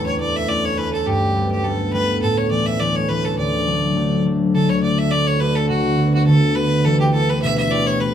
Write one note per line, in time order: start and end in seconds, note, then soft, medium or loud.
0.00 4.53 D2 medium
0.00 1.11 E2 medium
0.00 0.19 A3 soft
0.00 1.35 B3 soft
0.00 0.20 C#4 soft
0.00 0.21 E4 medium
0.06 0.18 C#5 medium
0.20 0.47 A3 soft
0.20 0.48 C#4 soft
0.20 0.49 E4 soft
0.20 0.38 D5 medium
0.36 0.50 E5 medium
0.48 0.77 A3 soft
0.48 0.77 C#4 soft
0.48 0.78 E4 soft
0.48 0.67 D5 medium
0.65 0.79 C#5 medium
0.77 1.35 A3 soft
0.77 2.52 C#4 soft
0.77 3.39 E4 medium
0.77 0.92 B4 medium
0.93 1.09 A4 medium
1.06 2.27 G2 soft
1.06 1.51 G4 medium
1.35 1.63 G3 soft
1.35 1.64 A3 soft
1.35 1.64 B3 soft
1.51 1.66 G4 medium
1.64 1.92 G3 soft
1.64 1.93 A3 soft
1.64 1.94 B3 soft
1.64 1.92 A4 medium
1.93 2.27 G3 soft
1.93 2.51 A3 soft
1.93 5.05 B3 medium
1.93 2.20 B4 medium
2.22 3.43 A2 medium
2.22 2.39 A4 medium
2.38 2.50 C#5 medium
2.51 2.79 E3 soft
2.51 2.80 A3 soft
2.51 2.81 C#4 soft
2.51 2.68 D5 medium
2.67 2.82 E5 medium
2.80 3.08 E3 soft
2.80 3.09 A3 soft
2.80 3.10 C#4 soft
2.80 2.98 D5 medium
2.96 3.10 C#5 medium
3.09 3.43 E3 soft
3.09 3.67 A3 soft
3.09 3.44 C#4 soft
3.09 3.26 B4 loud
3.25 3.38 A4 medium
3.38 4.59 D2 medium
3.38 4.21 D5 medium
3.67 3.95 F#3 soft
3.67 3.96 A3 soft
3.67 3.96 D4 soft
3.96 4.24 F#3 soft
3.96 4.25 A3 soft
3.96 4.26 D4 soft
4.25 4.59 F#3 soft
4.25 4.82 A3 soft
4.25 4.83 D4 soft
4.54 8.14 D2 medium
4.54 5.69 D3 medium
4.54 4.71 A4 medium
4.70 4.82 C#5 medium
4.82 5.12 A3 soft
4.82 5.40 D4 soft
4.82 5.41 F#4 soft
4.82 5.00 D5 medium
4.99 5.12 E5 medium
5.11 5.40 A3 medium
5.11 5.29 D5 loud
5.27 5.42 C#5 medium
5.40 8.01 A3 soft
5.40 5.98 D4 soft
5.40 5.98 F#4 medium
5.40 5.57 B4 loud
5.56 5.68 A4 medium
5.69 6.26 D3 medium
5.69 6.11 F#4 medium
5.98 6.55 B3 soft
5.98 6.56 D4 soft
5.98 6.56 F#4 soft
6.14 6.26 F#4 medium
6.26 6.90 D3 medium
6.26 6.57 A4 medium
6.55 7.13 B3 soft
6.55 8.14 D4 soft
6.55 7.21 F#4 medium
6.55 6.86 B4 loud
6.85 7.48 E3 medium
6.85 6.99 A4 loud
7.00 7.13 G4 medium
7.13 7.71 B3 soft
7.13 7.72 E4 soft
7.13 7.72 G4 soft
7.13 7.31 A4 medium
7.30 7.41 B4 medium
7.42 8.06 B2 medium
7.42 7.57 E5 loud
7.58 7.73 E5 medium
7.71 8.14 B3 soft
7.71 8.14 E4 soft
7.71 8.14 G4 soft
7.71 7.88 D5 loud
7.87 8.02 C#5 loud
8.00 8.14 A3 soft
8.00 8.14 B4 medium